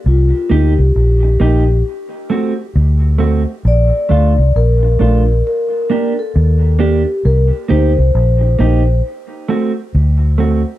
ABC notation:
X:1
M:4/4
L:1/16
Q:"Swing 16ths" 1/4=67
K:Cdor
V:1 name="Vibraphone"
F2 G6 z8 | d4 B4 B3 A3 G2 | B2 c6 z8 |]
V:2 name="Clean electric guitar"
z2 [B,EG]2 z2 [B,EG]2 z2 [A,C^F]2 z2 [A,CF]2 | z2 [A,DF]2 z2 [A,DF]2 z2 [B,DG]2 z2 [B,DG]2 | z2 [B,EG]2 z2 [B,EG]2 z2 [A,C^F]2 z2 [A,CF]2 |]
V:3 name="Fingered electric bass" clef=bass
C,, z D,, C,, B,,,2 B,,,2 z4 D,,3 z | B,,, z D,, C,, B,,,2 B,,,2 z4 E,,3 z | C,, z D,, C,, B,,,2 B,,,2 z4 D,,3 z |]